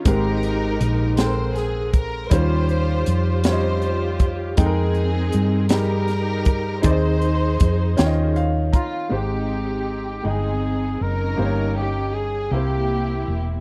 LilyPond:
<<
  \new Staff \with { instrumentName = "String section" } { \time 6/8 \key aes \major \tempo 4. = 53 << { bes'4. c''8 aes'8 bes'8 | c''4. c''4 r8 | aes'4. bes'4. | c''2 r8 f'8 |
g'4. aes'4 bes'8~ | bes'8 g'8 aes'8 g'4 r8 | } \\ { <ees' g'>4. r4. | <f' g'>4. <f' g'>4. | <c' ees'>4. <ees' g'>4. | <ees' aes'>2 r4 |
<c' ees'>4. <c' ees'>4 <des' ees'>8~ | <des' ees'>4 r8 <bes e'>4. | } >> }
  \new Staff \with { instrumentName = "Trumpet" } { \time 6/8 \key aes \major r2. | r2. | r2. | r2 r8 f'8 |
g'4. aes'4 bes'8~ | bes'8 g'8 aes'8 g'4 r8 | }
  \new Staff \with { instrumentName = "Upright piano" } { \time 6/8 \key aes \major << { r2. | r2. | r2. | r2 f''8 bes''8 |
r2. | r2. | } \\ { <aes c' g' bes'>4 r8 <aes c' a' bes' g''>4 r8 | <g des' f' c''>4 r8 <g des' f' des'' ees''>4 r8 | <aes ees' a' bes' g''>4 r8 <g ees' g' aes' bes'>4 r8 | <c' ees' aes' d'' ees''>4 r8 <des' f' des'' ees'' g''>4 r8 |
<aes ees' g' c''>4 r8 <aes ees' ees'' g''>4 r8 | <bes ees' g' c'' des''>4 r8 <bes e' g' c''>4 r8 | } >> }
  \new Staff \with { instrumentName = "Upright piano" } { \clef bass \time 6/8 \key aes \major aes,4. r4. | ees4. r4. | r2. | ees4. ees4. |
aes,4. r4. | g,4. c4. | }
  \new Staff \with { instrumentName = "Fingered electric bass" } { \clef bass \time 6/8 \key aes \major aes,,4 bes,,2 | ees,4 f,2 | f,4 g,2 | ees,4 f,8 ees,4 r8 |
aes,,4. g,,4 ges,,8 | g,,4. c,4 e,,8 | }
  \new DrumStaff \with { instrumentName = "Drums" } \drummode { \time 6/8 <hh bd>8 hh8 hh8 <hh sn>8 <hh sn>8 <hh bd>8 | <hh bd>8 hh8 hh8 <hh sn>8 hh8 <hh bd>8 | <hh bd>8 hh8 hh8 <hh sn>8 <hh sn>8 <hh bd>8 | <hh bd>8 hh8 <hh bd>8 <hh sn>8 hh8 <hh bd>8 |
r4. r4. | r4. r4. | }
>>